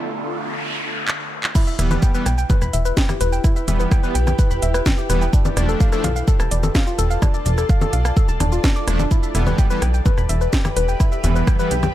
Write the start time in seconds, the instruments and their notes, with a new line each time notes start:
Already playing: analog synth pad D3 A3 F4 A4, noise sweep
1.08 clap
1.44 clap
1.55 ambient pad E4, synth pluck E4, kick, crash, shaker
1.67 synth pluck E5, shaker
1.79 analog synth bass E1, analog polysynth E3 G3 B3, synth pluck E5, cross-stick, closed hi-hat, shaker
1.91 synth pluck B4, low conga, shaker
1.96 ambient pad G4
2.01 ambient pad B4, synth pluck G5, kick, shaker
2.14 analog polysynth E3 G3 B3, synth pluck B4, shaker
2.26 analog synth bass B1, synth pluck G5, cross-stick, closed hi-hat, shaker
2.38 synth pluck G5, ambient pad G5, shaker
2.50 synth pluck B4, kick, low conga, shaker
2.62 analog synth bass E1, synth pluck B5, cross-stick, shaker
2.73 analog synth bass E1, synth pluck E5, closed hi-hat, shaker
2.85 synth pluck B4, shaker
2.97 synth pluck G5, kick, snare, shaker
3.09 synth pluck G4, cross-stick, low conga, shaker
3.21 analog synth bass E1, synth pluck B4, closed hi-hat, shaker
3.33 synth pluck G5, shaker
3.44 synth pluck E4, kick, cross-stick, shaker
3.56 synth pluck E5, shaker
3.68 analog synth bass E1, analog polysynth E3 G3 B3, synth pluck E5, closed hi-hat, low conga, shaker
3.80 synth pluck B4, shaker
3.91 synth pluck G5, kick, cross-stick, shaker
4.03 analog polysynth E3 G3 B3, synth pluck B4, shaker
4.15 analog synth bass B1, synth pluck G5, closed hi-hat, shaker
4.27 synth pluck G5, cross-stick, low conga, shaker
4.39 synth pluck B4, kick, shaker
4.51 analog synth bass E1, synth pluck B5, shaker
4.62 analog synth bass E1, synth pluck E5, closed hi-hat, shaker
4.74 synth pluck B4, cross-stick, shaker
4.86 synth pluck G5, kick, snare, low conga, shaker
4.98 synth pluck G4, shaker
5.10 analog synth bass E1, analog polysynth E3 G3 B3, synth pluck B4, cross-stick, closed hi-hat, shaker
5.22 synth pluck G5, shaker
5.33 synth pluck D4, ambient pad F4, kick, shaker
5.45 synth pluck D5, low conga, shaker
5.57 analog synth bass E1, analog polysynth F3 A3 D4, synth pluck D5, cross-stick, closed hi-hat, shaker
5.64 ambient pad A5
5.68 ambient pad A4, synth pluck A4, shaker
5.75 ambient pad D5
5.80 synth pluck F5, kick, shaker
5.92 analog polysynth F3 A3 D4, synth pluck A4, cross-stick, shaker
6.04 analog synth bass B1, synth pluck F5, closed hi-hat, low conga, shaker
6.16 synth pluck F5, shaker
6.28 synth pluck A4, kick, shaker
6.40 analog synth bass E1, synth pluck A5, cross-stick, shaker
6.51 analog synth bass E1, synth pluck D5, closed hi-hat, shaker
6.63 synth pluck A4, low conga, shaker
6.75 synth pluck F5, kick, cross-stick, snare, shaker
6.87 synth pluck F4, shaker
6.99 analog synth bass E1, synth pluck A4, closed hi-hat, shaker
7.10 synth pluck F5, shaker
7.22 synth pluck D4, kick, cross-stick, low conga, shaker
7.34 synth pluck D5, shaker
7.46 analog synth bass E1, synth pluck D5, closed hi-hat, shaker
7.58 synth pluck A4, cross-stick, shaker
7.69 synth pluck F5, kick, shaker
7.81 synth pluck A4, low conga, shaker
7.93 analog synth bass B1, synth pluck F5, closed hi-hat, shaker
8.05 synth pluck F5, cross-stick, shaker
8.17 synth pluck A4, kick, shaker
8.29 analog synth bass E1, synth pluck A5, shaker
8.40 analog synth bass E1, synth pluck D4, cross-stick, closed hi-hat, low conga, shaker
8.52 synth pluck F4, shaker
8.64 synth pluck D4, kick, snare, shaker
8.76 synth pluck D6, shaker
8.88 analog synth bass E1, analog polysynth F3 A3 D4, synth pluck D4, cross-stick, closed hi-hat, shaker
8.99 synth pluck D4, low conga, shaker
9.11 synth pluck E4, ambient pad G4, kick, shaker
9.18 ambient pad B4
9.23 synth pluck E5, shaker
9.35 analog synth bass E1, analog polysynth E3 G3 B3, synth pluck E5, cross-stick, closed hi-hat, shaker
9.47 synth pluck B4, ambient pad B5, low conga, shaker
9.58 synth pluck G5, kick, shaker
9.70 analog polysynth E3 G3 B3, synth pluck B4, shaker
9.80 analog synth bass B1, ambient pad E5, synth pluck G5, cross-stick, closed hi-hat, shaker
9.94 synth pluck G5, shaker
10.06 synth pluck B4, kick, low conga, shaker
10.18 analog synth bass E1, synth pluck B5, cross-stick, shaker
10.29 analog synth bass E1, synth pluck E5, closed hi-hat, shaker
10.41 synth pluck B4, shaker
10.53 synth pluck G5, kick, snare, shaker
10.65 synth pluck G4, cross-stick, low conga, shaker
10.77 analog synth bass E1, synth pluck B4, closed hi-hat, shaker
10.88 synth pluck G5, shaker
11.00 synth pluck E4, kick, cross-stick, shaker
11.12 synth pluck E5, shaker
11.24 analog synth bass E1, analog polysynth E3 G3 B3, synth pluck E5, closed hi-hat, low conga, shaker
11.36 synth pluck B4, shaker
11.47 synth pluck G5, kick, cross-stick, shaker
11.59 analog polysynth E3 G3 B3, synth pluck B4, shaker
11.71 analog synth bass B1, synth pluck G5, closed hi-hat, shaker
11.83 synth pluck G5, cross-stick, low conga, shaker